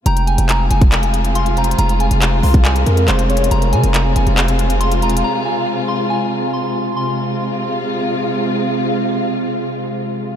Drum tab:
HH |x--x--x--x--x-----x--x--x--x--x--x--x--x--x-x-x-|x--x--x--x--x-----o--x--x--x--x--x--x--x--x-x-x-|x--x--x--x--x-----x--x--x--x--x--x--x--x--x-x-x-|------------------------------------------------|
CP |------------x-----------x-----------------------|------------x-----------x-----------x-----------|------------x-----------x-----------------------|------------------------------------------------|
BD |---------------------o--------------------------|---------------------o--------------------------|------------------------------------------------|------------------------------------------------|

HH |------------------------------------------------|------------------------------------------------|
CP |------------------------------------------------|------------------------------------------------|
BD |------------------------------------------------|------------------------------------------------|